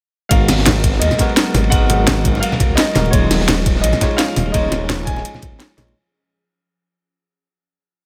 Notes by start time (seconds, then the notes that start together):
0.29 G#1 F#3 G#3 B3 F#4 A#4 F5, kick, closed hi-hat, ride
0.48 snare, closed hi-hat, open hi-hat, muted conga
0.58 G#1, snare
0.66 snare, closed hi-hat, ride, high conga
0.75 ride
0.84 kick, closed hi-hat, ride
0.93 snare
1.00 D#2 D#5, closed hi-hat, ride
1.11 snare, high conga
1.18 G#3 B3 F#4 A#4, kick, snare, closed hi-hat, ride, muted conga
1.29 ride
1.37 snare, closed hi-hat, ride
1.47 ride
1.54 G#1, snare, open hi-hat, ride, high conga
1.64 ride
1.70 G#1 G#3 B3 F#4 A#4 F#5, kick, closed hi-hat, ride
1.90 closed hi-hat, ride, muted conga
1.99 G#1
2.07 snare, closed hi-hat, ride, high conga
2.25 kick, closed hi-hat, ride
2.34 snare, muted conga
2.40 F5, closed hi-hat, ride
2.52 snare, high conga
2.60 kick, closed hi-hat, ride, muted conga
2.69 C#2
2.75 D#5, snare, closed hi-hat, ride
2.87 snare
2.95 D#1 G#3 B3 F#4 A#4, snare, open hi-hat, ride, high conga
3.05 ride, muted conga
3.11 D#1 F3 G#3 C#4 D#4 F4 G#4 C#5, kick, closed hi-hat, ride
3.15 C#5
3.31 snare, closed hi-hat, open hi-hat, muted conga
3.40 D#1, snare
3.48 snare, closed hi-hat, ride, high conga
3.59 ride
3.66 kick, closed hi-hat, ride
3.76 snare
3.81 A#1 D#5, closed hi-hat, ride
3.92 snare, high conga
4.00 G#3 D#4 F4 C#5, kick, snare, closed hi-hat, ride, muted conga
4.11 ride
4.17 F5, snare, closed hi-hat, ride
4.28 ride
4.36 D#1, snare, open hi-hat, ride, high conga
4.46 ride
4.52 D#1 G#3 D#4 F4 C#5 D#5, kick, closed hi-hat, ride
4.72 snare, closed hi-hat, ride, muted conga
4.81 D#1
4.89 snare, closed hi-hat, ride, high conga
5.05 G#5, kick, closed hi-hat, ride
5.16 snare, muted conga
5.25 closed hi-hat, ride
5.34 snare, high conga
5.42 kick, closed hi-hat, ride, muted conga
5.52 G#1
5.59 snare, closed hi-hat, ride
5.70 snare
5.77 A#1 G#3 D#4 F4 C#5, snare, open hi-hat, ride, high conga
5.87 ride, muted conga